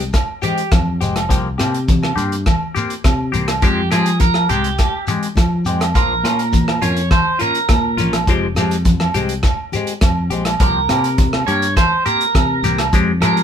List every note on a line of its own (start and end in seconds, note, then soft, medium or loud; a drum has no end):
0.00 0.12 C2 medium
0.00 closed hi-hat soft
0.13 kick medium
0.13 cross-stick medium
0.13 closed hi-hat soft
0.13 muted conga soft
0.13 low agogo medium
0.13 shekere medium
0.42 0.62 G#3 soft
0.42 0.61 C4 soft
0.42 0.60 G4 medium
0.42 0.72 G4 medium
0.42 closed hi-hat soft
0.42 high conga medium
0.42 shekere medium
0.58 closed hi-hat soft
0.72 0.99 F2 medium
0.72 kick loud
0.72 cross-stick medium
0.72 closed hi-hat medium
0.72 high conga medium
0.72 low agogo medium
0.72 shekere medium
1.01 1.29 F1 medium
1.01 1.20 G#3 soft
1.01 1.19 C4 soft
1.01 1.19 G4 medium
1.01 closed hi-hat soft
1.01 muted conga soft
1.01 shekere medium
1.16 cross-stick medium
1.16 closed hi-hat soft
1.16 low agogo medium
1.16 shekere soft
1.29 1.57 C2 medium
1.29 1.47 F3 medium
1.29 1.48 A#3 medium
1.29 1.48 C4 medium
1.29 1.48 G4 medium
1.29 kick medium
1.29 closed hi-hat medium
1.29 shekere medium
1.58 2.13 C3 medium
1.58 1.78 A#3 soft
1.58 1.77 C4 medium
1.58 1.76 G4 medium
1.58 cross-stick medium
1.58 closed hi-hat soft
1.58 muted conga soft
1.58 low agogo medium
1.58 shekere medium
1.74 closed hi-hat soft
1.88 kick medium
1.88 closed hi-hat medium
1.88 high conga loud
1.88 shekere medium
2.03 cross-stick medium
2.03 low agogo medium
2.16 2.44 G2 medium
2.16 2.35 A#3 soft
2.16 2.35 C4 soft
2.16 2.34 G4 medium
2.16 closed hi-hat soft
2.16 shekere medium
2.32 closed hi-hat soft
2.46 kick medium
2.46 cross-stick medium
2.46 closed hi-hat soft
2.46 muted conga soft
2.46 high conga medium
2.46 low agogo medium
2.46 shekere medium
2.75 2.94 A#3 soft
2.75 2.94 C4 medium
2.75 2.93 G4 medium
2.75 closed hi-hat soft
2.75 shekere medium
2.90 closed hi-hat soft
3.04 3.32 C3 medium
3.04 kick loud
3.04 cross-stick medium
3.04 closed hi-hat soft
3.04 high conga medium
3.04 low agogo medium
3.04 shekere medium
3.32 3.61 C2 medium
3.32 3.52 A#3 soft
3.32 3.51 C4 medium
3.32 3.51 G4 medium
3.32 closed hi-hat soft
3.32 muted conga soft
3.32 high conga medium
3.32 shekere medium
3.48 cross-stick medium
3.48 closed hi-hat soft
3.48 low agogo medium
3.48 shekere soft
3.62 3.90 F2 medium
3.62 3.80 F3 medium
3.62 3.81 G#3 medium
3.62 3.81 C4 medium
3.62 3.91 G4 medium
3.62 3.81 G4 medium
3.62 kick medium
3.62 closed hi-hat soft
3.62 shekere medium
3.90 4.46 F3 medium
3.90 4.10 G#3 soft
3.90 4.10 C4 soft
3.90 4.09 G4 medium
3.90 4.20 G#4 medium
3.90 cross-stick medium
3.90 closed hi-hat soft
3.90 muted conga soft
3.90 low agogo medium
3.90 shekere medium
4.06 closed hi-hat soft
4.06 shekere soft
4.20 4.49 A#4 medium
4.20 kick medium
4.20 closed hi-hat medium
4.20 high conga loud
4.20 shekere medium
4.34 cross-stick medium
4.34 low agogo medium
4.49 4.77 C2 medium
4.49 4.69 G#3 soft
4.49 4.68 C4 soft
4.49 4.67 G4 soft
4.49 5.04 G4 medium
4.49 closed hi-hat soft
4.49 shekere medium
4.64 closed hi-hat medium
4.79 kick medium
4.79 cross-stick medium
4.79 closed hi-hat soft
4.79 muted conga soft
4.79 low agogo medium
4.79 shekere medium
5.07 5.27 G#3 soft
5.07 5.27 C4 soft
5.07 5.26 G4 soft
5.07 muted clean electric guitar stroke medium
5.07 closed hi-hat soft
5.07 high conga medium
5.07 shekere medium
5.23 closed hi-hat soft
5.36 5.64 F3 medium
5.36 kick loud
5.36 cross-stick medium
5.36 closed hi-hat medium
5.36 high conga medium
5.36 low agogo medium
5.36 shekere medium
5.65 5.93 F2 medium
5.65 5.85 G#3 soft
5.65 5.85 C4 medium
5.65 5.84 G4 medium
5.65 closed hi-hat soft
5.65 muted conga soft
5.65 shekere medium
5.80 cross-stick medium
5.80 closed hi-hat soft
5.80 low agogo medium
5.80 shekere soft
5.95 6.22 A#1 medium
5.95 6.13 F3 medium
5.95 6.13 A#3 medium
5.95 6.14 F4 medium
5.95 6.79 A#4 medium
5.95 muted clean electric guitar stroke medium
5.95 kick medium
5.95 closed hi-hat soft
5.95 shekere medium
6.23 6.78 A#2 medium
6.23 6.43 A#3 soft
6.23 6.43 C#4 soft
6.23 6.42 F4 soft
6.23 cross-stick medium
6.23 closed hi-hat medium
6.23 muted conga soft
6.23 low agogo medium
6.39 closed hi-hat soft
6.39 shekere soft
6.52 kick medium
6.52 closed hi-hat soft
6.52 high conga loud
6.52 shekere medium
6.68 cross-stick medium
6.68 low agogo medium
6.82 7.10 F2 medium
6.82 7.01 A#3 soft
6.82 7.01 C#4 medium
6.82 7.00 F4 soft
6.82 7.11 C#5 medium
6.82 closed hi-hat soft
6.82 shekere medium
6.97 closed hi-hat soft
6.97 shekere soft
7.11 7.40 C5 medium
7.11 kick medium
7.11 cross-stick medium
7.11 closed hi-hat soft
7.11 muted conga soft
7.11 high conga medium
7.11 low agogo medium
7.11 shekere medium
7.39 7.59 A#3 soft
7.39 7.58 C#4 medium
7.39 7.57 F4 soft
7.39 8.24 A#4 medium
7.39 closed hi-hat soft
7.39 shekere medium
7.55 closed hi-hat soft
7.55 shekere soft
7.69 7.96 A#2 medium
7.69 kick medium
7.69 cross-stick medium
7.69 closed hi-hat medium
7.69 high conga medium
7.69 low agogo medium
7.69 shekere medium
7.97 8.25 A#1 medium
7.97 8.17 A#3 soft
7.97 8.17 C#4 soft
7.97 8.16 F4 medium
7.97 closed hi-hat soft
7.97 muted conga soft
7.97 high conga medium
7.97 shekere medium
8.13 cross-stick medium
8.13 closed hi-hat soft
8.13 low agogo medium
8.13 shekere soft
8.27 8.54 F1 medium
8.27 8.46 F3 medium
8.27 8.46 G#3 medium
8.27 8.46 C4 loud
8.27 8.47 G4 loud
8.27 kick medium
8.27 closed hi-hat soft
8.27 shekere medium
8.55 9.10 F2 medium
8.55 8.75 G4 medium
8.55 cross-stick medium
8.55 closed hi-hat soft
8.55 low agogo medium
8.55 shekere medium
8.59 8.76 G#3 soft
8.59 8.76 C4 soft
8.71 closed hi-hat soft
8.71 shekere soft
8.85 kick medium
8.85 closed hi-hat medium
8.85 high conga medium
8.85 shekere medium
9.00 cross-stick medium
9.00 low agogo medium
9.14 9.42 C2 medium
9.14 9.34 G#3 soft
9.14 9.33 C4 medium
9.14 9.32 G4 medium
9.14 closed hi-hat soft
9.14 shekere medium
9.29 closed hi-hat soft
9.43 kick medium
9.43 cross-stick medium
9.43 closed hi-hat soft
9.43 low agogo medium
9.43 shekere medium
9.72 9.92 G#3 soft
9.72 9.92 C4 medium
9.72 9.91 G4 soft
9.72 closed hi-hat soft
9.72 high conga medium
9.72 shekere medium
9.87 closed hi-hat medium
10.01 10.29 F2 medium
10.01 kick loud
10.01 cross-stick medium
10.01 closed hi-hat medium
10.01 high conga medium
10.01 low agogo medium
10.01 shekere medium
10.30 10.58 A#1 medium
10.30 10.50 G#3 soft
10.30 10.49 C4 medium
10.30 10.48 G4 medium
10.30 closed hi-hat soft
10.30 muted conga soft
10.45 cross-stick medium
10.45 closed hi-hat medium
10.45 low agogo medium
10.45 shekere soft
10.60 10.87 C2 medium
10.60 10.78 F3 medium
10.60 10.79 A#3 medium
10.60 10.79 C4 medium
10.60 10.79 G4 medium
10.60 11.44 A#4 medium
10.60 kick medium
10.60 closed hi-hat medium
10.60 shekere medium
10.89 11.44 C3 loud
10.89 11.08 C4 soft
10.89 11.07 G4 soft
10.89 cross-stick medium
10.89 closed hi-hat soft
10.89 muted conga soft
10.89 low agogo medium
10.89 shekere medium
10.93 11.09 A#3 soft
11.04 closed hi-hat soft
11.04 shekere soft
11.18 kick loud
11.18 closed hi-hat medium
11.18 high conga medium
11.18 shekere medium
11.33 cross-stick medium
11.33 low agogo medium
11.47 11.75 G2 loud
11.47 11.65 G4 soft
11.47 11.75 C#5 loud
11.47 closed hi-hat soft
11.51 11.67 A#3 soft
11.62 closed hi-hat medium
11.76 12.05 C5 medium
11.76 kick medium
11.76 cross-stick medium
11.76 closed hi-hat soft
11.76 muted conga soft
11.76 high conga medium
11.76 low agogo medium
11.76 shekere medium
12.06 12.25 A#3 soft
12.06 12.24 C4 soft
12.06 12.23 G4 soft
12.06 12.89 A#4 loud
12.06 closed hi-hat soft
12.06 shekere medium
12.21 closed hi-hat soft
12.34 12.62 C3 medium
12.34 kick medium
12.34 cross-stick medium
12.34 closed hi-hat soft
12.34 high conga medium
12.34 low agogo medium
12.34 shekere medium
12.63 12.91 C2 medium
12.63 12.83 A#3 soft
12.63 12.82 C4 soft
12.63 12.82 G4 medium
12.63 closed hi-hat soft
12.63 muted conga soft
12.63 high conga medium
12.63 shekere loud
12.79 cross-stick medium
12.79 closed hi-hat soft
12.79 low agogo medium
12.79 shekere soft
12.93 13.20 F2 loud
12.93 13.11 G#3 medium
12.93 13.11 C4 medium
12.93 13.12 G4 loud
12.93 muted clean electric guitar stroke medium
12.93 kick medium
12.93 closed hi-hat medium
12.93 shekere medium
13.21 13.43 F3 medium
13.21 13.41 C4 medium
13.21 13.40 G4 medium
13.21 13.43 A#4 medium
13.21 cross-stick medium
13.21 closed hi-hat soft
13.21 low agogo medium
13.21 shekere loud
13.25 13.41 G#3 soft
13.37 closed hi-hat soft
13.37 shekere soft